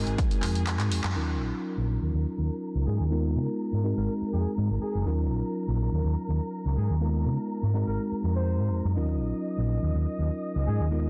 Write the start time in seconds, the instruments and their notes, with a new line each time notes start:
Already playing: tine electric piano G#3 C4 D#4 F#4 A#4, violin section G#4 G#5
0.06 fingered electric bass G#1, closed hi-hat
0.18 kick, closed hi-hat
0.31 muted fingered electric bass stroke, closed hi-hat
0.43 fingered electric bass F2, clap, open hi-hat
0.55 closed hi-hat
0.67 clap, closed hi-hat
0.80 fingered electric bass G#2, clap, closed hi-hat
0.92 fingered electric bass F2, open hi-hat
1.04 fingered electric bass F#2, clap, closed hi-hat
1.15 fingered electric bass D#2, tine electric piano F#3 C#4 D#4 F4 A#4, violin section A#4 A#5
1.40 fingered electric bass A#1
1.77 fingered electric bass A#1
2.02 fingered electric bass D#2
2.14 fingered electric bass D#2
2.38 fingered electric bass D#2
2.75 fingered electric bass C#2
2.87 fingered electric bass G#2, horn section G#4
2.99 fingered electric bass D#2
3.10 tine electric piano G#3 B3 D#4 F4 A#4
3.36 fingered electric bass C#3
3.73 fingered electric bass G#2
3.84 tine electric piano G#3 C4 D#4 F#4 A#4
3.97 fingered electric bass G#1, horn section A#4
4.21 muted fingered electric bass stroke
4.33 fingered electric bass F2, horn section G#4
4.46 muted fingered electric bass stroke
4.58 fingered electric bass G#2
4.70 fingered electric bass G#1
4.82 horn section G#4
4.95 fingered electric bass F#1
5.06 fingered electric bass D#2, tine electric piano F#3 C#4 D#4 F4 A#4
5.31 fingered electric bass A#1
5.68 fingered electric bass A#1
5.92 fingered electric bass D#2
6.04 fingered electric bass D#2
6.28 fingered electric bass D#2
6.65 fingered electric bass C#2
6.77 fingered electric bass G#2, horn section G#4
6.90 fingered electric bass D#2
7.00 tine electric piano G#3 B3 D#4 F4 A#4
7.26 fingered electric bass C#3
7.63 fingered electric bass G#2
7.74 tine electric piano G#3 C4 D#4 F#4 A#4
7.87 fingered electric bass G#1, horn section A#4
8.12 muted fingered electric bass stroke
8.23 fingered electric bass F2
8.36 horn section C5
8.60 fingered electric bass G#2
8.72 fingered electric bass F2
8.85 fingered electric bass F#2
8.96 fingered electric bass D#2, tine electric piano F#3 C#4 D#4 F4 A#4, violin section D#5 D#6
9.21 fingered electric bass A#1
9.58 fingered electric bass A#1
9.82 fingered electric bass D#2
9.94 fingered electric bass D#2
10.19 fingered electric bass D#2
10.55 fingered electric bass C#2
10.67 fingered electric bass G#2, horn section G#4
10.80 fingered electric bass D#2
10.91 tine electric piano G#3 B3 D#4 F4 A#4